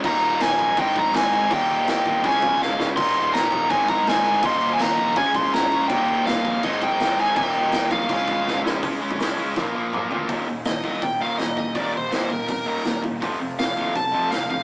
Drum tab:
CC |x-x-x-x-x-x-x-x-|x-x-x-x-x-x-----|x-x-x-x-x-x-x-x-|x-x-x-x-x-x-x-x-|
HH |----------------|----------------|----------------|----------------|
SD |----o-------o---|----o-------o-o-|----o-------o---|----o-------o---|
T2 |----------------|----------------|----------------|----------------|
FT |----------------|----------------|----------------|----------------|
BD |o-----o-o-o-----|o-----o-o-o-----|o-----o-o-o-----|o-----o-o-o-----|

CC |x-x-x-x-x-x-x-x-|x-x-x-x-x-x-----|----------------|----------------|
HH |----------------|----------------|o---o-----------|o---o---o---o---|
SD |----o-------o---|----o-------o-o-|----o---o-------|----o-------o---|
T2 |----------------|----------------|------------o---|----------------|
FT |----------------|----------------|--------------o-|----------------|
BD |o-----o-o-o-----|o-----o-o-o-----|o--o----o-------|o-----o-o-----o-|

CC |----------------|----------------|
HH |o---o---o---o---|o---o---o---o---|
SD |----o-------o---|----o-------o---|
T2 |----------------|----------------|
FT |----------------|----------------|
BD |o-----o-o-----o-|o-----o-o-----o-|